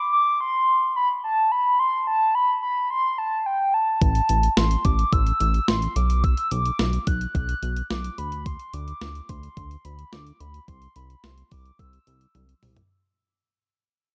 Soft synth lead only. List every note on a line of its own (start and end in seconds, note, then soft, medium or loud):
0.00 0.12 D6 loud
0.13 0.39 D6 loud
0.41 0.92 C6 loud
0.96 1.09 B5 loud
1.24 1.53 A5 medium
1.52 1.81 B5 loud
1.79 2.07 C6 loud
2.07 2.36 A5 loud
2.35 2.62 B5 loud
2.63 2.89 B5 loud
2.90 3.20 C6 loud
3.18 3.48 A5 loud
3.46 3.75 G5 medium
3.74 4.01 A5 medium
4.02 4.53 A5 loud
4.57 4.86 C6 loud
4.85 5.14 D6 loud
5.13 5.40 E6 loud
5.40 5.66 E6 loud
5.68 5.97 C6 loud
5.96 6.25 D6 loud
6.24 6.53 E6 loud
6.51 7.09 D6 loud
7.07 7.34 F#6 loud
7.35 7.86 F#6 loud
7.90 8.20 D6 loud
8.18 8.47 B5 loud
8.46 8.75 C6 loud
8.74 9.31 D6 loud
9.29 9.86 C6 loud
9.85 10.14 B5 loud
10.13 10.42 D6 loud
10.40 10.68 B5 loud
10.68 10.97 C6 loud
10.96 11.25 B5 loud
11.24 11.51 C6 loud
11.52 11.81 D6 loud
11.79 12.63 E6 loud